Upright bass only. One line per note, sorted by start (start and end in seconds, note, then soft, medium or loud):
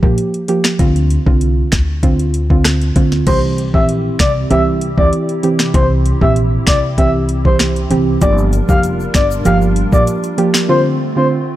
0.03 0.14 A#1 medium
0.79 1.16 D2 loud
1.27 1.61 C2 medium
1.72 2.92 D2 medium
2.96 3.20 D2 medium
3.27 3.74 C2 loud
3.74 4.09 A#1 medium
4.20 4.43 C2 medium
4.51 4.87 C2 loud
4.98 5.09 D2 medium
5.74 6.10 C2 loud
6.21 6.56 A#1 medium
6.67 7.87 C2 medium
7.91 8.14 C2 medium
8.22 8.58 G1 loud
8.69 9.04 F1 medium
9.15 9.38 G1 medium
9.45 9.82 G1 loud
9.93 10.04 A#1 medium